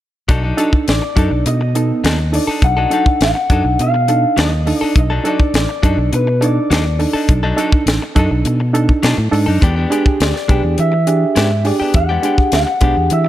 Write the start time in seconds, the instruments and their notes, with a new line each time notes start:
0.28 fingered electric bass B1, clean electric guitar F#3 D4 D#4 A4, kick, closed hi-hat
0.43 clean electric guitar F#3 D4 D#4 A4
0.57 clean electric guitar F#3 D4 D#4 A4, reed electric piano D4 D#4 A4, closed hi-hat
0.73 muted clean electric guitar stroke, kick
0.88 fingered electric bass A1, clean electric guitar D5, snare, closed hi-hat
1.02 muted clean electric guitar stroke
1.16 fingered electric bass F#2, clean electric guitar F#3 D4 D#4 A4, reed electric piano D4 D#4 A4, kick, closed hi-hat
1.31 fingered electric bass B1, muted clean electric guitar stroke
1.46 fingered electric bass B2, clean electric guitar D#5, muted clean electric guitar stroke, closed hi-hat
1.61 muted clean electric guitar stroke
1.75 reed electric piano B3 D#4 A4, muted clean electric guitar stroke, closed hi-hat
2.04 fingered electric bass D#2, clean electric guitar F#3 D4 D#4 A4, snare, closed hi-hat
2.19 muted clean electric guitar stroke
2.32 reed electric piano D4 D#4 A4, clean electric guitar D5, muted clean electric guitar stroke, open hi-hat
2.47 clean electric guitar D4 D#4 A4, muted fingered electric bass stroke
2.62 fingered electric bass B1, clean electric guitar F#5, kick, closed hi-hat
2.77 clean electric guitar F#3 D4 D#4 A4
2.90 clean electric guitar F#3 D4 D#4 A4, reed electric piano D4 D#4 A4, closed hi-hat
3.06 muted clean electric guitar stroke, kick
3.21 fingered electric bass A1, clean electric guitar F#5, snare, closed hi-hat
3.35 muted clean electric guitar stroke
3.50 fingered electric bass F#2, clean electric guitar F#3 D4 D#4 A4, reed electric piano D4 D#4 A4, kick, closed hi-hat
3.64 fingered electric bass B1, muted clean electric guitar stroke
3.79 fingered electric bass B2, clean electric guitar F5, muted clean electric guitar stroke, closed hi-hat
3.94 muted clean electric guitar stroke
4.08 reed electric piano D4 D#4 A4, muted clean electric guitar stroke, closed hi-hat
4.37 fingered electric bass D#2, clean electric guitar F#3 D4 D#4 A4 D#5, snare, closed hi-hat
4.52 muted clean electric guitar stroke
4.66 reed electric piano D4 D#4 A4, muted clean electric guitar stroke, open hi-hat
4.78 clean electric guitar A4 D5, muted fingered electric bass stroke
4.83 clean electric guitar D4 D#4
4.95 fingered electric bass B1, clean electric guitar D#5, kick, closed hi-hat
5.10 clean electric guitar F#3 D4 D#4 A4
5.24 clean electric guitar F#3 D4 D#4 A4, reed electric piano D4 D#4 A4, closed hi-hat
5.28 clean electric guitar D5
5.40 muted clean electric guitar stroke, kick
5.54 fingered electric bass A1, clean electric guitar D5, snare, closed hi-hat
5.69 muted clean electric guitar stroke
5.83 fingered electric bass F#2, clean electric guitar F#3 D4 D#4 A4, reed electric piano D4 D#4 A4, kick, closed hi-hat
5.97 fingered electric bass B1, muted clean electric guitar stroke
6.12 fingered electric bass B2, clean electric guitar B4, muted clean electric guitar stroke, closed hi-hat
6.27 muted clean electric guitar stroke
6.41 reed electric piano D4 D#4 A4, clean electric guitar D5, muted clean electric guitar stroke, closed hi-hat
6.70 fingered electric bass D#2, clean electric guitar F#3 D4 D#4 A4, snare, closed hi-hat
6.85 muted clean electric guitar stroke
6.99 reed electric piano D4 D#4 A4, muted clean electric guitar stroke, open hi-hat
7.13 clean electric guitar D4 D#4 A4, muted fingered electric bass stroke
7.29 fingered electric bass B1, kick, closed hi-hat
7.43 clean electric guitar F#3 D4 D#4 A4
7.57 clean electric guitar F#3 D4 D#4 A4, reed electric piano D4 D#4 A4, closed hi-hat
7.72 muted clean electric guitar stroke, kick
7.86 fingered electric bass A1, snare, closed hi-hat
8.02 muted clean electric guitar stroke
8.15 fingered electric bass F#2, clean electric guitar F#3 D4 D#4 A4, reed electric piano D4 D#4 A4, kick, closed hi-hat
8.31 fingered electric bass B1, muted clean electric guitar stroke
8.45 fingered electric bass B2, muted clean electric guitar stroke, closed hi-hat
8.60 muted clean electric guitar stroke
8.73 reed electric piano D4 D#4 A4, muted clean electric guitar stroke, closed hi-hat
8.89 kick
9.03 fingered electric bass B2, clean electric guitar F#3 D4 D#4 A4, snare, closed hi-hat
9.18 fingered electric bass A2, muted clean electric guitar stroke
9.31 fingered electric bass G#2, reed electric piano D4 D#4 A4, muted clean electric guitar stroke, open hi-hat
9.46 fingered electric bass F#2, clean electric guitar D4 D#4 A4
9.61 fingered electric bass E2, clean electric guitar G#3 B3 D4 G4, kick, closed hi-hat
9.76 clean electric guitar G#3 B3 D4 G4
9.90 clean electric guitar G#3 B3 D4 G4, reed electric piano D4 G4 G#4, closed hi-hat
10.05 muted clean electric guitar stroke, kick
10.20 fingered electric bass D2, clean electric guitar D5, snare, closed hi-hat
10.34 muted clean electric guitar stroke, snare
10.48 fingered electric bass B1, clean electric guitar G#3 B3 D4 G4, reed electric piano D4 G4 G#4, kick, closed hi-hat
10.63 fingered electric bass E2, muted clean electric guitar stroke
10.78 fingered electric bass E3, clean electric guitar E5, muted clean electric guitar stroke, closed hi-hat
10.92 muted clean electric guitar stroke
11.07 reed electric piano D4 G4 G#4, muted clean electric guitar stroke, closed hi-hat
11.36 fingered electric bass G#2, clean electric guitar G#3 B3 D4 G4, snare, closed hi-hat
11.51 muted clean electric guitar stroke
11.64 reed electric piano D4 G4 G#4, clean electric guitar D5, muted clean electric guitar stroke, open hi-hat
11.80 clean electric guitar B3 D4 G4, muted fingered electric bass stroke
11.94 fingered electric bass E2, clean electric guitar F#5, kick, closed hi-hat
12.09 clean electric guitar G#3 B3 D4 G4
12.22 clean electric guitar G#3 B3 D4 G4, reed electric piano D4 G4 G#4, closed hi-hat
12.38 muted clean electric guitar stroke, kick
12.52 fingered electric bass D2, clean electric guitar F#5, snare, closed hi-hat
12.67 muted clean electric guitar stroke
12.81 fingered electric bass B1, clean electric guitar G#3 B3 D4 G4, reed electric piano D4 G4 G#4, kick, closed hi-hat
12.96 fingered electric bass E2, muted clean electric guitar stroke
13.10 fingered electric bass E3, clean electric guitar E5, muted clean electric guitar stroke, closed hi-hat
13.25 muted clean electric guitar stroke